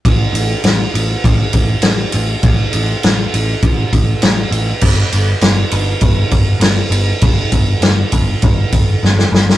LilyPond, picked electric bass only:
\new Staff \with { instrumentName = "Picked electric bass" } { \clef bass \time 4/4 \key g \lydian \tempo 4 = 100 a,,8 a,,8 a,,8 a,,8 a,,8 a,,8 a,,8 a,,8 | a,,8 a,,8 a,,8 a,,8 a,,8 a,,8 a,,8 a,,8 | g,,8 g,,8 g,,8 g,,8 g,,8 g,,8 g,,8 g,,8 | g,,8 g,,8 g,,8 g,,8 g,,8 g,,8 g,,8 g,,8 | }